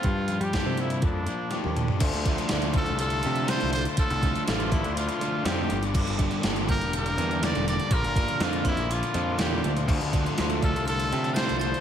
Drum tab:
CC |----------------|x---------------|----------------|x---------------|
HH |x-xxx-xxx-x-x-x-|xxxxxxxxxxxxxxxx|xxxxxxxxxxx-x-xx|-xxxxxxxxxxxxxxx|
SD |----o-------o---|----o-------o---|----o-------o---|----o-------o-o-|
T1 |-------------o--|----------------|----------------|----------------|
T2 |--------------o-|----------------|----------------|----------------|
FT |---------------o|----------------|----------------|----------------|
BD |o---o---o-------|o-o---o---------|o-o---o---------|o-o---o---------|

CC |----------------|x---------------|
HH |xxxxxxxxxxx-x-xx|-xxxxxxxxxxxxxxx|
SD |----o-------o---|----o-------o---|
T1 |----------------|----------------|
T2 |----------------|----------------|
FT |----------------|----------------|
BD |o-o---o---------|o-o---o---------|